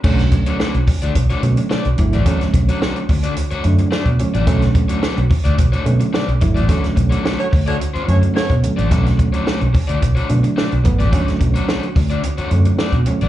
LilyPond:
<<
  \new Staff \with { instrumentName = "Horn section" } { \time 4/4 \key b \minor \tempo 4 = 108 r1 | r1 | r1 | r4 r16 <a fis' cis''>16 r16 <a fis' cis''>16 r8 <a fis' cis''>16 r16 <a fis' cis''>8 r8 |
r1 | r1 | }
  \new Staff \with { instrumentName = "Overdriven electric guitar" } { \time 4/4 \key b \minor <a d' fis' cis''>16 r8 <a d' fis' cis''>16 <a d' fis' cis''>16 r8 <a d' fis' d''>16 r16 <a d' fis' cis''>16 r8 <a d' fis' d''>16 r8 <a d' fis' d''>16 | <a d' fis' cis''>16 r8 <a d' fis' cis''>16 <a d' fis' cis''>16 r8 <a d' fis' d''>16 r16 <a d' fis' cis''>16 r8 <a d' fis' d''>16 r8 <a d' fis' d''>16 | <a d' fis' cis''>16 r8 <a d' fis' cis''>16 <a d' fis' cis''>16 r8 <a d' fis' d''>16 r16 <a d' fis' cis''>16 r8 <a d' fis' d''>16 r8 <a d' fis' d''>16 | <a d' fis' cis''>16 r8 <a d' fis' cis''>16 <a d' fis' cis''>16 r8 <a d' fis' d''>16 r16 <a d' fis' cis''>16 r4 r16 <a d' fis' d''>16 |
<a d' fis' cis''>16 r8 <a d' fis' cis''>16 <a d' fis' cis''>16 r8 <a d' fis' d''>16 r16 <a d' fis' cis''>16 r8 <a d' fis' d''>16 r8 <a d' fis' d''>16 | <a d' fis' cis''>16 r8 <a d' fis' cis''>16 <a d' fis' cis''>16 r8 <a d' fis' d''>16 r16 <a d' fis' cis''>16 r8 <a d' fis' d''>16 r8 <a d' fis' d''>16 | }
  \new Staff \with { instrumentName = "Reed electric piano" } { \clef bass \time 4/4 \key b \minor <d fis a cis'>4. r4 <d fis a cis'>8 r8 <d fis a e'>8 | <d fis a cis'>4. r4 <d fis a d'>8 r8 <d fis a cis'>8 | <cis d fis a cis'>4. r4 <d fis a cis'>8 r8 <d fis a e'>8 | <d fis a cis'>4. r4 <d fis a cis'>8 r8 <d fis a cis'>8 |
<d fis a cis'>4. r4 <d fis a d'>8 r8 <d fis a b>8 | <d fis a cis'>4. r4 <d fis a cis'>8 r8 <d fis a cis'>8 | }
  \new Staff \with { instrumentName = "Fingered electric bass" } { \clef bass \time 4/4 \key b \minor b,,8. r8 b,,16 r16 d,16 b,,16 r16 b,16 r8 b,,16 gis,,16 a,,16 | r8 b,,16 r8. d,8 r8 fis,16 r8 b,16 r16 a,,16 | b,,8. r8 b,,16 r16 d,16 b,,16 r16 b,16 r8 b,,16 gis,,16 a,,16 | r8 b,,16 r8. d,8 r8 fis,16 r8 b,16 r16 a,,16 |
b,,8. r8 b,,16 r16 d,16 b,,16 r16 b,16 r8 b,,16 gis,,16 a,,16 | r8 b,,16 r8. d,8 r8 fis,16 r8 b,16 r16 a,,16 | }
  \new DrumStaff \with { instrumentName = "Drums" } \drummode { \time 4/4 <cymc bd>16 <hh sn>16 <hh bd>16 hh16 sn16 hh16 <hho bd>16 hh16 <hh bd>16 hh16 hh16 hh16 sn16 hh16 <hh bd>16 hh16 | <hh bd>16 <hh sn>16 <hh bd>16 hh16 sn16 hh16 <hho bd>16 hh16 hh16 hh16 hh16 hh16 sn16 <hh bd>16 hh16 hh16 | <hh bd>16 <hh sn>16 <hh bd>16 hh16 sn16 hh16 <hho bd>16 hh16 <hh bd>16 hh16 hh16 hh16 sn16 hh16 <hh bd>16 hh16 | <hh bd>16 <hh sn>16 <hh bd>16 hh16 sn16 hh16 <hho bd>16 hh16 hh16 hh16 hh16 hh16 sn16 <hh bd>16 hh16 hh16 |
<hh bd>16 <hh sn>16 <hh bd>16 hh16 sn16 hh16 <hho bd>16 hh16 <hh bd>16 hh16 hh16 hh16 sn16 hh16 <hh bd>16 hh16 | <hh bd>16 <hh sn>16 <hh bd>16 hh16 sn16 hh16 <hho bd>16 hh16 hh16 hh16 hh16 hh16 sn16 <hh bd>16 hh16 hh16 | }
>>